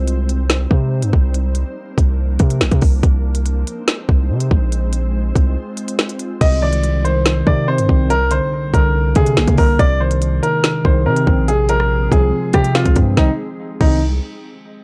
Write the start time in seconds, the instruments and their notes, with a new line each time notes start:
Already playing: 808-style bass C2, ambient pad C4 C5
0.08 closed hi-hat
0.29 closed hi-hat
0.50 snare, closed hi-hat
0.71 808-style bass C3, kick
1.02 808-style bass G2, closed hi-hat
1.13 808-style bass C2, kick
1.34 closed hi-hat
1.55 closed hi-hat
1.98 808-style bass C2, kick, closed hi-hat
2.39 808-style bass C3, kick, closed hi-hat
2.50 closed hi-hat
2.61 808-style bass A#1, snare
2.71 808-style bass C3, kick, closed hi-hat
2.81 808-style bass C2, kick, open hi-hat
3.03 808-style bass C2, ambient pad G#3 C4 C5, kick, closed hi-hat
3.35 closed hi-hat
3.46 closed hi-hat
3.67 closed hi-hat
3.88 snare, closed hi-hat
4.09 808-style bass C2, kick
4.30 808-style bass C3
4.40 closed hi-hat
4.51 808-style bass A#1, kick
4.72 closed hi-hat
4.93 closed hi-hat
5.36 808-style bass C2, kick, closed hi-hat
5.77 closed hi-hat
5.88 closed hi-hat
5.99 snare
6.09 closed hi-hat
6.19 closed hi-hat
6.41 808-style bass C2, tine electric piano C3, grand piano D#5, kick, closed hi-hat, crash
6.62 tine electric piano D#3, grand piano D5
6.73 closed hi-hat
6.84 closed hi-hat
7.05 tine electric piano D#3, grand piano C5, closed hi-hat
7.26 snare, closed hi-hat
7.47 808-style bass C3, tine electric piano D#3, grand piano D5, kick
7.68 tine electric piano C4, grand piano C5
7.78 808-style bass G2, closed hi-hat
7.89 808-style bass C2, tine electric piano C4, kick
8.10 tine electric piano C2, grand piano A#4, closed hi-hat
8.31 tine electric piano D3, grand piano C5, closed hi-hat
8.74 808-style bass C2, tine electric piano D3, grand piano A#4, kick, closed hi-hat
9.15 808-style bass C3, tine electric piano D3, grand piano G#4, kick, closed hi-hat
9.26 closed hi-hat
9.37 808-style bass A#1, tine electric piano A#3, snare
9.47 808-style bass C3, kick, closed hi-hat
9.58 808-style bass C2, tine electric piano A#3, grand piano A#4, kick, open hi-hat
9.79 808-style bass C2, tine electric piano C3, ambient pad G#3 C4 G#4, grand piano D5, kick, closed hi-hat
10.00 tine electric piano D#3, grand piano C5
10.11 closed hi-hat
10.22 closed hi-hat
10.42 tine electric piano D#3, grand piano A#4, closed hi-hat
10.64 snare, closed hi-hat
10.85 808-style bass C2, tine electric piano D#3, grand piano C5, kick
11.06 808-style bass C3, tine electric piano C4, grand piano A#4
11.16 closed hi-hat
11.27 808-style bass A#1, tine electric piano C4, kick
11.48 tine electric piano C3, grand piano G#4, closed hi-hat
11.69 tine electric piano F3, grand piano A#4, closed hi-hat
11.80 cross-stick
12.12 808-style bass C2, tine electric piano F3, grand piano G#4, kick, closed hi-hat
12.53 808-style bass C3, tine electric piano F3, grand piano G4, kick, cross-stick, closed hi-hat
12.64 closed hi-hat
12.75 tine electric piano C4, grand piano F4, snare
12.86 808-style bass C2, kick, closed hi-hat
12.96 808-style bass G2, tine electric piano C4, kick, closed hi-hat
13.17 808-style bass C2, tine electric piano C3 D#3 G3 C4, grand piano D#4, kick, snare
13.81 808-style bass C2, tine electric piano C3 D#3 G3 C4, grand piano D#4, kick, crash